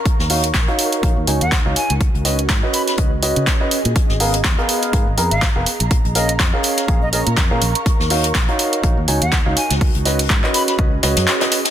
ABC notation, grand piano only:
X:1
M:4/4
L:1/16
Q:"Swing 16ths" 1/4=123
K:C#mix
V:1 name="Grand piano"
z2 [DFce] z2 [DFce]3 [DFce] z [DFcg] z2 [DFce] z2 | z2 [CFBd] z2 [CFBd]3 [CFBd] z [CFBd]3 [CFBd] z2 | z2 [B,GAe] z2 [B,GAe]3 [B,GAe] z [B,GAa] z2 [B,GAe] z2 | z2 [CGAe] z2 [CGAe]3 [CGAe] z [CGAa] z2 [CGAe] z2 |
z2 [DFce] z2 [DFce]3 [DFce] z [DFcg] z2 [DFce] z2 | z2 [CFBd] z2 [CFBd]3 [CFBd] z [CFBd]3 [CFBd] z2 |]